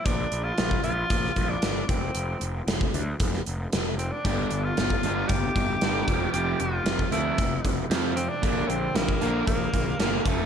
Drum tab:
HH |x-x-x-x-x-x-x-x-|x-x-x-x-x-x-x-x-|x-x-x-x-x-x-x-x-|x-x-x-x-x-x-x-x-|
SD |----o----o--o---|----o----o--o---|----o-------o---|----o-------o---|
BD |o----o--o-o---o-|-----o--o-------|o----o--o-o---o-|-----o--o-o-----|

HH |x-x-x-x-x-x-x-x-|
SD |----o-------o---|
BD |o----o--o-o---o-|